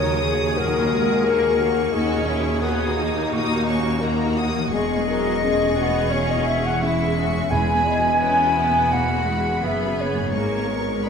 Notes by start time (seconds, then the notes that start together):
Already playing: D#2 C#3 F#3 A#3 C#4 F#4 A#4 C#5 D#6
0.12 F#4
0.21 G#4
0.35 A#3
0.56 A#2 F#3 F#4 A#4
0.80 A#3
0.92 G#3
1.04 F#4
1.25 A#3 G#4 A#4 C#6
1.49 F#4
1.58 A#3 F#4
1.72 A#3
1.91 D#2 C#4 D#4 F#4 G#4
2.16 A#2
2.25 C#4 E4
2.39 F#4
2.60 B3 D#4 F#4 A#4 D#6
2.85 F#4
2.97 A#3 D#4
3.09 A#3
3.31 A#2 D#4 F#4 D#6
3.54 A#3
3.67 C#4 C#6
3.78 F#4
4.00 D#4 F#4 A#4 A#5
4.26 F#4
4.37 F#4 D#6
4.49 A#3
4.55 E3
4.59 G#3
4.63 C#4
4.68 G#3 G#4 D#5
4.72 E1 E2 G#4 D#5 C#6
4.96 G#3
5.08 F#3 A#4
5.20 G#4
5.43 G#3 C#4 G#4
5.66 G#4
5.77 B3 F#4
5.88 G#3
6.09 C#4 C#5
6.13 E2
6.27 D#5
6.36 E3
6.46 E5
6.60 G#4 F#5
6.66 F#5
6.81 G#3 C#4 E4 E5 C#6
7.06 G#4
7.16 C#4 F#4
7.28 G#3
7.34 E3
7.38 B3
7.43 E4
7.47 E2 G#3 F#4 G#4 G#5
7.52 E1 E2 E4 B5
7.75 B3
7.86 D#5
7.99 F#4
8.20 B3 C#4 E4 B4 B5
8.46 F#4
8.56 B3
8.69 B3
8.91 B2 A#3 F#4 F#5
9.17 B3
9.26 G#3 E4
9.40 F#4
9.62 F#1 F#2 B3 G#4 B4 E5
9.87 F#4
10.01 C#5
10.10 B3
10.16 G#2
10.20 B3
10.25 D#4
10.30 G#2 G#4 A#4 C#6
10.34 G#1 G#2 A#3 G#4
10.56 B3
10.68 G#3 A#4
10.81 A#4
11.04 G#4 B4 D#5 B5